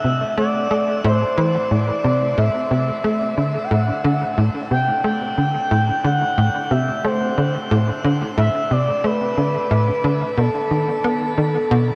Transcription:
Already playing: analog synth lead E5
0.04 analog synth bass C3
0.38 analog synth bass A3, analog synth lead D5
0.71 analog synth bass A3
1.04 analog synth bass A2, analog synth lead C5
1.38 analog synth bass E3
1.71 analog synth bass A2, analog synth lead D5
2.04 analog synth bass C3
2.38 analog synth bass A2, analog synth lead E5
2.71 analog synth bass C3
3.04 analog synth bass A3
3.38 analog synth bass D3
3.64 analog synth lead G5
3.71 analog synth bass A2, analog synth lead F#5
4.04 analog synth bass D3
4.38 analog synth bass A2
4.71 analog synth bass C3, analog synth lead G5
5.04 analog synth bass A3, analog synth lead G5
5.38 analog synth bass D3
5.71 analog synth bass A2
6.04 analog synth bass D3, analog synth lead F#5
6.38 analog synth bass A2
6.71 analog synth bass C3, analog synth lead E5
7.04 analog synth bass A3, analog synth lead C5
7.38 analog synth bass D3
7.71 analog synth bass A2
8.04 analog synth bass D3
8.38 analog synth bass A2, analog synth lead E5
8.71 analog synth bass C3, analog synth lead D5
9.04 analog synth bass A3, analog synth lead B4
9.37 analog synth bass D3
9.71 analog synth bass A2
10.04 analog synth bass D3
10.38 analog synth bass B2, analog synth lead A4
10.71 analog synth bass D#3
11.04 analog synth bass B3
11.38 analog synth bass D#3
11.71 analog synth bass B2

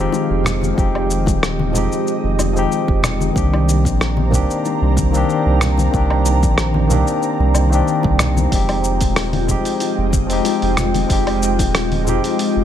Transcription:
Already playing: ambient pad D#3 G#3 G4 F5, tine electric piano F3 G#3 C4
0.00 tine electric piano D#4 G4
0.12 high bongo, cabasa
0.30 sub bass F1
0.44 cross-stick, low conga, cabasa
0.61 high bongo, high conga, cabasa
0.74 tine electric piano F3 G#3 C4, ambient pad D#5, kick
0.78 sub bass F1, tine electric piano D#4 G4, cabasa
0.95 low woodblock
1.10 cabasa
1.26 sub bass D#1, kick, high bongo, cabasa
1.43 cross-stick, cabasa
1.59 high conga
1.72 sub bass F1, tine electric piano F3 G#3 C4, high bongo, low conga, cabasa
1.76 tine electric piano D#4 G4
1.92 cabasa
2.07 cabasa
2.24 sub bass F1
2.39 high bongo, high conga, cabasa, low woodblock
2.53 tine electric piano F3 G#3 C4, cabasa
2.58 tine electric piano D#4 G4
2.72 cabasa
2.88 sub bass F1, kick, high bongo
3.03 cross-stick, low conga, cabasa, low woodblock
3.20 high conga, cabasa
3.32 sub bass C2, tine electric piano D#3 A#3 C4, ambient pad C5 D5 A#5, kick
3.37 tine electric piano D4 G4, cabasa
3.53 high bongo, low woodblock
3.69 cabasa
3.85 sub bass A#1, kick, cabasa
4.00 cross-stick, high bongo, cabasa
4.17 high conga
4.29 sub bass C2, tine electric piano D#3 A#3 C4, kick, low conga
4.33 tine electric piano D4 G4, cabasa
4.50 cabasa
4.65 high bongo, cabasa
4.82 sub bass C2
4.97 kick, high conga, cabasa
5.11 tine electric piano D#3 A#3 C4, high bongo, cabasa
5.16 tine electric piano D4 G4
5.30 cabasa
5.46 sub bass C2
5.61 cross-stick, low conga, cabasa
5.78 high bongo, high conga, cabasa
5.91 sub bass C2, tine electric piano D#3 A#3 C4, kick, cabasa
5.96 tine electric piano D4 G4
6.10 low woodblock
6.26 high bongo, cabasa
6.43 sub bass A#1, kick, cabasa
6.58 cross-stick, cabasa
6.74 high conga
6.87 sub bass C2, tine electric piano D#3 A#3 C4, high bongo, low conga, cabasa
6.92 tine electric piano D4 G4
7.07 cabasa
7.23 cabasa
7.39 sub bass C2, high bongo
7.55 high conga, cabasa, low woodblock
7.69 tine electric piano D#3 A#3 C4, cabasa
7.74 tine electric piano D4 G4
7.88 cabasa
8.03 sub bass C2, kick, high bongo
8.19 cross-stick, low conga, cabasa, low woodblock
8.37 high conga, cabasa
8.49 sub bass F1, tine electric piano F3 G#3 C4, ambient pad G#3 F4 D#5 G5, kick, open hi-hat, cabasa
8.54 tine electric piano D#4 G4
8.69 open hi-hat, high bongo, low woodblock
8.84 cabasa
9.01 sub bass D#1, kick, open hi-hat, cabasa
9.16 cross-stick, open hi-hat, cabasa
9.33 open hi-hat, high bongo, high conga
9.46 sub bass F1, tine electric piano F3 G#3 C4, kick, low conga, cabasa
9.50 tine electric piano D#4 G4
9.65 open hi-hat, cabasa
9.80 open hi-hat, high bongo, cabasa
9.98 sub bass F1
10.12 kick, high conga, cabasa
10.27 tine electric piano F3 G#3 C4, open hi-hat, cabasa
10.31 tine electric piano D#4 G4
10.45 open hi-hat, high bongo, cabasa
10.62 sub bass F1, open hi-hat
10.77 cross-stick, low conga, cabasa
10.94 open hi-hat, high bongo, high conga, cabasa
11.07 sub bass F1, tine electric piano F3 G#3 C4, kick, open hi-hat, cabasa
11.11 tine electric piano D#4 G4
11.27 open hi-hat, low woodblock
11.43 cabasa
11.59 sub bass D#1, kick, open hi-hat, high bongo, cabasa
11.75 cross-stick, open hi-hat, cabasa
11.92 open hi-hat, high conga
12.03 sub bass F1, tine electric piano F3 G#3 C4, high bongo, low conga, cabasa
12.08 tine electric piano D#4 G4
12.24 open hi-hat, cabasa
12.39 open hi-hat, cabasa
12.56 sub bass F1

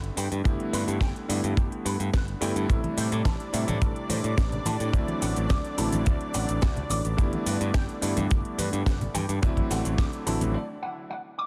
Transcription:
Already playing: electric grand piano D3 G3 A3 B3 E4
0.04 closed hi-hat
0.17 picked electric bass G2, clean electric guitar G5, open hi-hat, shaker
0.32 picked electric bass G2, closed hi-hat, shaker
0.44 picked electric bass G1, electric grand piano D3 G3 A3 B3 E4, clean electric guitar G4, kick, closed hi-hat, shaker
0.60 closed hi-hat
0.73 picked electric bass G2, clean electric guitar B4, snare, open hi-hat, shaker
0.88 picked electric bass G2, closed hi-hat, shaker
1.01 picked electric bass G1, clean electric guitar G5, kick, snare, closed hi-hat, shaker
1.16 closed hi-hat
1.28 picked electric bass G2, electric grand piano D3 G3 A3 B3 E4, clean electric guitar D5, open hi-hat, shaker
1.44 picked electric bass G2, closed hi-hat, shaker
1.57 picked electric bass G1, clean electric guitar G4, kick, closed hi-hat, shaker
1.72 muted picked electric bass stroke, closed hi-hat
1.85 picked electric bass G2, clean electric guitar B4, open hi-hat, shaker
2.00 picked electric bass G2, closed hi-hat, shaker
2.14 picked electric bass G1, clean electric guitar B4, kick, snare, closed hi-hat, shaker
2.28 closed hi-hat
2.41 picked electric bass G2, electric grand piano D3 G3 A3 B3 E4, clean electric guitar G5, open hi-hat, shaker
2.56 picked electric bass G2, closed hi-hat, shaker
2.68 picked electric bass A1, electric grand piano C3 G3 A3 E4, analog synth pad D4 D5, clean electric guitar A4, kick, closed hi-hat, maracas, shaker
2.84 closed hi-hat, high conga
2.97 picked electric bass A2, clean electric guitar C5, open hi-hat, maracas, shaker
3.12 picked electric bass A2, closed hi-hat, maracas, shaker
3.25 picked electric bass A1, clean electric guitar A5, kick, snare, closed hi-hat, high conga, maracas, shaker
3.40 closed hi-hat, maracas
3.53 picked electric bass A2, electric grand piano C3 G3 A3 E4, clean electric guitar E5, open hi-hat, maracas, shaker
3.68 picked electric bass A2, closed hi-hat, high conga, shaker, maracas
3.82 picked electric bass A1, clean electric guitar A4, kick, closed hi-hat, low conga, maracas, shaker
3.96 closed hi-hat
4.10 picked electric bass A2, clean electric guitar C5, open hi-hat, high conga, shaker, maracas
4.24 picked electric bass A2, closed hi-hat, maracas, shaker
4.38 picked electric bass A1, clean electric guitar D5, kick, snare, closed hi-hat, maracas, shaker
4.52 closed hi-hat, low conga, maracas
4.65 picked electric bass A2, clean electric guitar A5, open hi-hat, high conga, maracas, shaker
4.80 picked electric bass A2, closed hi-hat, maracas, shaker
4.93 picked electric bass D2, electric grand piano D3 F#3 A3 C4 E4, clean electric guitar D5, kick, closed hi-hat, maracas, shaker
5.08 closed hi-hat, high conga
5.22 picked electric bass A1, clean electric guitar F#5, open hi-hat, maracas, shaker
5.36 picked electric bass A1, closed hi-hat, maracas, shaker
5.49 clean electric guitar D6, kick, snare, closed hi-hat, high conga, maracas, shaker
5.65 closed hi-hat, maracas
5.77 picked electric bass A1, electric grand piano D3 F#3 A3 C4 E4, clean electric guitar A5, open hi-hat, shaker, maracas
5.92 picked electric bass A1, closed hi-hat, high conga, maracas, shaker
6.06 picked electric bass D2, clean electric guitar D5, kick, closed hi-hat, maracas, shaker
6.21 muted picked electric bass stroke, closed hi-hat
6.34 picked electric bass A1, clean electric guitar F#5, open hi-hat, high conga, maracas, shaker
6.48 picked electric bass A1, closed hi-hat, maracas, shaker
6.61 picked electric bass D2, clean electric guitar F#5, kick, snare, closed hi-hat, maracas, shaker
6.76 closed hi-hat, low conga, maracas
6.90 picked electric bass A1, clean electric guitar D6, open hi-hat, high conga, maracas, shaker
7.04 picked electric bass A1, closed hi-hat, maracas, shaker
7.17 picked electric bass G1, electric grand piano D3 G3 A3 B3 E4, clean electric guitar G4, kick, closed hi-hat, maracas, shaker
7.33 closed hi-hat, high conga
7.46 picked electric bass G2, clean electric guitar B4, open hi-hat, maracas, shaker
7.61 picked electric bass G2, closed hi-hat, shaker, maracas
7.74 picked electric bass G1, clean electric guitar G5, kick, snare, closed hi-hat, high conga, shaker, maracas
7.89 closed hi-hat, maracas
8.01 picked electric bass G2, electric grand piano D3 G3 A3 B3 E4, clean electric guitar D5, open hi-hat, shaker, maracas
8.17 picked electric bass G2, closed hi-hat, high conga, shaker, maracas
8.30 picked electric bass G1, clean electric guitar G4, kick, closed hi-hat, low conga, maracas, shaker
8.45 closed hi-hat
8.58 picked electric bass G2, clean electric guitar B4, open hi-hat, high conga, maracas, shaker
8.73 picked electric bass G2, closed hi-hat, maracas, shaker
8.86 picked electric bass G1, clean electric guitar B4, kick, snare, closed hi-hat, maracas, shaker
9.01 closed hi-hat, low conga, maracas
9.14 picked electric bass G2, clean electric guitar G5, open hi-hat, high conga, shaker, maracas
9.29 picked electric bass G2, closed hi-hat, shaker, maracas
9.42 picked electric bass D2, electric grand piano D3 F#3 A3 C4 E4, clean electric guitar D5, kick, closed hi-hat, shaker, maracas
9.57 kick, closed hi-hat, high conga
9.71 picked electric bass A1, clean electric guitar F#5, snare, open hi-hat, maracas, shaker
9.85 picked electric bass A1, closed hi-hat, maracas, shaker
9.98 clean electric guitar D6, kick, snare, closed hi-hat, high conga, maracas, shaker
10.12 closed hi-hat, maracas
10.26 picked electric bass A1, electric grand piano D3 F#3 A3 C4 E4, clean electric guitar A5, open hi-hat, shaker, maracas
10.41 picked electric bass A1, closed hi-hat, high conga, maracas, shaker
10.54 clean electric guitar D5
10.82 clean electric guitar F#5
11.11 clean electric guitar F#5
11.39 clean electric guitar D6

